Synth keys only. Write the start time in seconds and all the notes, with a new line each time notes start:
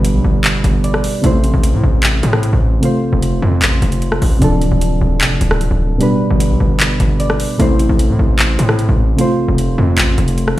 Already playing: B2 G3 D4 B4
0.84 D5
1.22 C3 A3 E4
1.26 C5
2.81 C3 A3 F4
2.85 C5
4.39 C3 F3 D4
4.44 A4
5.98 B2 G3 D4
6.03 B4
7.20 D5
7.57 C3 A3 E4
7.62 C5
9.17 C3 A3 F4
9.21 C5